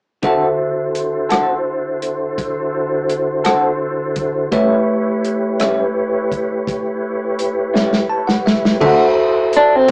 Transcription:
0.22 D3 C4 E4 F#4 A4 C5 E5, kick, closed hi-hat
0.95 closed hi-hat
1.29 D3 C4 F#4 A4, cross-stick, closed hi-hat
2.02 closed hi-hat
2.38 kick, closed hi-hat
3.10 closed hi-hat
3.44 D3 C4 F#4 A4, cross-stick, closed hi-hat
4.16 kick, closed hi-hat
4.52 A2 G3 A3 C#4 E4 G4 B4 C#5 E5, kick, closed hi-hat
5.25 closed hi-hat
5.60 A2 G3 C#4 E4, cross-stick, closed hi-hat
6.32 kick, closed hi-hat
6.67 kick, closed hi-hat
7.39 closed hi-hat
7.74 A2 G3 C#4 E4, snare
7.93 snare
8.10 A5
8.27 F#5, snare
8.46 E5, snare
8.65 snare
8.80 D3 A3 C4 E4 F#4 A4 C5 E5, kick, crash
9.53 D4, closed hi-hat
9.76 C4

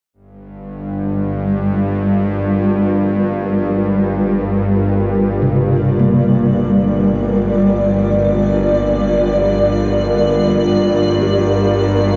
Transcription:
0.13 G1 G2 G3
1.26 F4
1.80 A#4
5.15 D5
5.42 C3
5.99 G3 A#3
10.05 A#4
11.21 G4

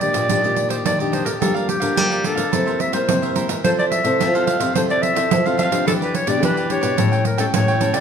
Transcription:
Already playing: A#2 G4 D5 D#5
0.01 A#3 D4 G4 D5, pandeiro
0.13 A#2 G4 D5 D#5, pandeiro
0.29 A#2 D#3 A#3 D4 G4 D5 D#5, pandeiro
0.43 A#3 D4 G4 D5 D#5, pandeiro
0.56 muted cavaquinho stroke, pandeiro
0.69 G4 C5 D5 D#5, pandeiro
0.86 A#2 D#3 D5, pandeiro
0.99 A#3 D4 G4 D5 D#5, pandeiro
1.12 D4 G4 C5 D5 D#5, pandeiro
1.25 D3 G4 A#4 D5 D#5, pandeiro
1.40 G2 F3 G3 A#3 D4 G4 A4 A#4 D5 F5, pandeiro
1.54 A#4 D5 F5, pandeiro
1.68 G4, muted cavaquinho stroke, pandeiro
1.80 D3 F3 A#3 D4 A#4 D5 F5, pandeiro
1.96 D3 G3 G4 A#4 D5 F5, pandeiro
2.10 A#4 D5 F5, pandeiro
2.24 F3 A#3 D4 A4, pandeiro
2.35 D3 A#4 D5 F5, pandeiro
2.51 C3 G3 A#3 E4 A#4 C5 E5, pandeiro
2.66 A#4 C5 E5, pandeiro
2.79 E5, muted cavaquinho stroke, pandeiro
2.92 G3 A#3 E4 A#4 C5 E5, pandeiro
3.08 G2 C3, pandeiro
3.22 A#4 C5 E5, pandeiro
3.35 G3 A#3 E4 A#4 C5 E5, pandeiro
3.48 E3 A#4 C5 E5, pandeiro
3.64 F3 C4 E4 F4 A4 C5 E5, pandeiro
3.79 A4 C5 D5 E5, pandeiro
3.91 E5, muted cavaquinho stroke, pandeiro
4.04 C3 C4 E4 A4 C5 E5, pandeiro
4.20 C3 F3 F4 A4 C5 E5, pandeiro
4.34 C4 E4 A4 C5 E5 F5, pandeiro
4.46 F5, pandeiro
4.60 C3 A4 C5 E5, pandeiro
4.75 C3 F3 C4 E4 F4 A4 C5 E5, pandeiro
4.89 A4 C5 D5 E5, pandeiro
5.02 E5, muted cavaquinho stroke, pandeiro
5.15 C4 E4 A4 C5 E5, pandeiro
5.31 C3 F3, pandeiro
5.46 C4 E4 A4 C5 E5 F5, pandeiro
5.57 F4 A4 C5 E5 F5, pandeiro
5.71 F3 B3 D4 G4 A4 C5 E5, pandeiro
5.86 E3 E4 G4 A4 B4 D5, pandeiro
6.01 G4 B4 D5, pandeiro
6.14 C#5, muted cavaquinho stroke, pandeiro
6.27 B2 B3 D4 G4 B4 D5, pandeiro
6.42 B2 E3 E4 G4 B4 D5, pandeiro
6.56 G4 B4 D5, pandeiro
6.70 B3 D4 G4 C#5, pandeiro
6.81 B2 G4 B4 D5, pandeiro
6.97 A2 G3 C#4 E4 A4 C#5 G5, pandeiro
7.12 A4 C#5 G5, pandeiro
7.25 A#4, muted cavaquinho stroke, pandeiro
7.38 G3 C#4 E4 A4 C#5 G5, pandeiro
7.54 A2 E3 C#5, pandeiro
7.68 A4 C#5 G5, pandeiro
7.80 G3 C#4 E4 A4 C#5 G5, pandeiro
7.93 C#3 A4 C#5 D5 G5, pandeiro

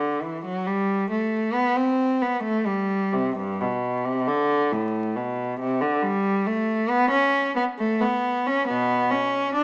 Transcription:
Already playing: D3
0.22 E3
0.45 F#3
0.67 G3
1.11 A3
1.54 B3
1.77 C4
2.22 B3
2.43 A3
2.66 G3
3.13 C3
3.37 G2
3.61 B2
4.05 C3
4.28 D3
4.72 A2
5.16 B2
5.60 C3
5.81 D3
6.03 G3
6.47 A3
6.90 B3
7.11 C#4
7.56 B3
7.78 A3
8.01 B3
8.47 C#4
8.68 B2 B3
9.11 C#4
9.55 D4

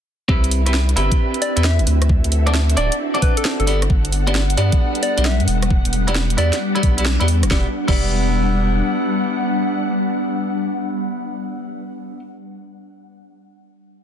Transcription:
0.28 C2 C4 D4 E4 G4 B4 E5, kick
0.44 closed hi-hat
0.51 open hi-hat
0.66 C4 E4 G4 B4 E5, cross-stick, closed hi-hat
0.74 snare
0.89 closed hi-hat
0.96 G1 C4 E4 G4 B4 E5, open hi-hat
1.12 kick, closed hi-hat
1.34 closed hi-hat
1.42 D5, open hi-hat
1.56 E2 C4 E4 G4 B4 E5, closed hi-hat
1.64 E5, snare
1.79 G1, closed hi-hat
1.87 D2 C4 D4 E4 F#4 A4, open hi-hat
2.02 cross-stick, closed hi-hat
2.09 kick
2.24 D2, closed hi-hat
2.32 open hi-hat
2.46 C4 D4 F#4 A4 D5, cross-stick, closed hi-hat
2.54 snare
2.70 F#5, closed hi-hat
2.77 D1 C4 D4 F#4 A4 D5, open hi-hat
2.92 closed hi-hat
3.14 C4 D4 F#4 A4 D5, closed hi-hat
3.22 B4, kick, open hi-hat
3.37 A4, closed hi-hat
3.45 snare
3.60 G1 A4, closed hi-hat
3.67 B3 D4 F#4 G4 A4 D5 F#5, open hi-hat
3.82 G3, cross-stick, closed hi-hat
3.90 G1, kick
4.05 closed hi-hat
4.12 open hi-hat
4.27 B3 D4 F#4 G4 D5, cross-stick, closed hi-hat
4.35 snare
4.50 closed hi-hat
4.57 G2 B3 D4 F#4 G4 D5, open hi-hat
4.72 kick, closed hi-hat
4.95 closed hi-hat
5.03 D5, open hi-hat
5.17 B1 B3 D4 F#4 G4 D5, closed hi-hat
5.25 E5, snare
5.40 G2, closed hi-hat
5.48 E1, open hi-hat
5.63 cross-stick, closed hi-hat
5.70 D4 G4, kick
5.85 E1, closed hi-hat
5.93 open hi-hat
6.07 B3 E4 F#4 G4 D5, cross-stick, closed hi-hat
6.15 snare
6.30 closed hi-hat
6.37 E2 B3 E4 F#4 G4 D5, open hi-hat
6.53 snare, closed hi-hat
6.75 B3 E4 F#4 G4 D5, closed hi-hat
6.83 B1, kick, open hi-hat
6.97 B3 E4 F#4 G4 D5, closed hi-hat
7.06 snare
7.20 E2 B3 E4 F#4 G4 D5, closed hi-hat
7.28 open hi-hat
7.43 E1, cross-stick, closed hi-hat
7.51 E1 G3 B3 D4 E4 F#4 G4 D5 F#5, kick, snare
7.60 G3
7.67 F#5
7.88 E1 B3 E4 F#4 G4 D5, kick, crash

